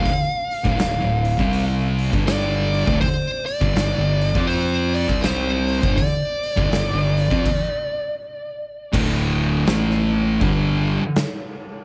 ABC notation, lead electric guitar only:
X:1
M:4/4
L:1/8
Q:"Swing" 1/4=81
K:Gdor
V:1 name="Lead electric guitar"
f4- f z d2 | c d3 c d c2 | d6 z2 | [K:Aphr] z8 |]